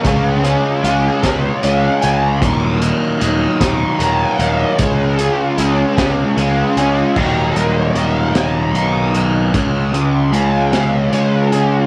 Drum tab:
CC |------|------|------|x-----|
HH |xxxxxx|xxxxxx|xxxxxx|-xxxxx|
SD |---o--|---o--|---o--|---o--|
BD |o--o--|o--o--|o--o--|o-----|

CC |------|
HH |xxxxxx|
SD |---o--|
BD |o-----|